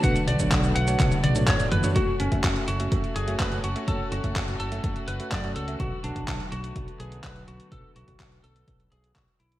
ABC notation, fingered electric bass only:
X:1
M:4/4
L:1/16
Q:1/4=125
K:F#m
V:1 name="Fingered electric bass" clef=bass
B,,, z B,,, B,,, B,,,2 B,,,2 B,,, z B,,,2 F,,, z F,,, z | F,,, z F,,, F,,, F,,, z F,,,2 F,,, z F,,,2 F,,,2 F,,, z | F,,, z F,,, F,,, F,,,2 F,,,2 F,,, z F,,, z F,,2 C,,2 | B,,, z B,,, B,,, B,,, z B,,,2 B,,, z B,,,2 z2 B,,, z |
B,,, z B,,, B,,, B,,,2 B,,,2 B,,,2 B,,,2 B,,, z B,,,2 |]